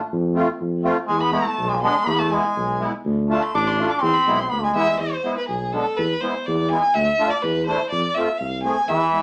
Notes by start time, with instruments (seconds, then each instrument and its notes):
0.12 tuba F2
0.35 accordion A3 C4 F4
0.60 tuba F2
0.84 accordion A3 C4 F4
1.07 tuba E2, trombone G#3, violin G#5
1.21 trombone B3, violin B5
1.32 accordion G#3 B3 E4, trombone A3, violin A5
1.59 tuba B1
1.68 trombone G#3, violin G#5
1.75 trombone F3
1.81 trombone G#3, accordion G#3 B3 D4, violin C6
2.05 tuba E2, trombone B3, violin B5
2.09 trombone A3
2.14 trombone B3
2.19 trombone A3, violin A5
2.31 accordion G#3 B3 E4, trombone G#3, violin G#5
2.57 tuba B1
2.79 accordion G#3 B3 E4
3.05 tuba D2
3.29 accordion A3 D4 F4, trombone A3, violin A5
3.43 violin C6
3.54 tuba A1, trombone D4, violin D6
3.67 violin C6
3.78 accordion A3 D4 F4
3.90 violin D6
4.01 tuba E2, trombone C4, violin C6
4.14 violin B5
4.26 tuba B1, accordion G#3 B3 E4
4.39 trombone C4, violin C6
4.50 tuba D2, trombone B3, violin B5
4.62 trombone G#3, violin G#5
4.74 tuba E2, accordion G#3 B3 E4, violin E5
4.99 tuba E2, violin C5
5.24 accordion G#3 B3 E4
5.37 violin B4
5.48 tuba B1, violin G#4
5.72 accordion G#3 B3 D4, violin A4
5.97 tuba E2, violin B4
6.21 accordion G#3 B3 E4, violin C5
6.46 tuba E2, violin D5
6.69 accordion G#3 B3 E4, violin G#5
6.94 tuba D2, violin E5
7.19 accordion A3 D4 F4
7.30 violin D5
7.42 tuba E2, violin B4
7.66 accordion A3 D4 E4, violin C5
7.90 tuba F2, violin D5
8.14 accordion A3 C4 F4, violin E5
8.38 tuba C2, violin F5
8.63 accordion A3 C4 G#4, violin G#5
8.88 tuba E2, trombone E3, violin E5
9.12 accordion G#3 B3 E4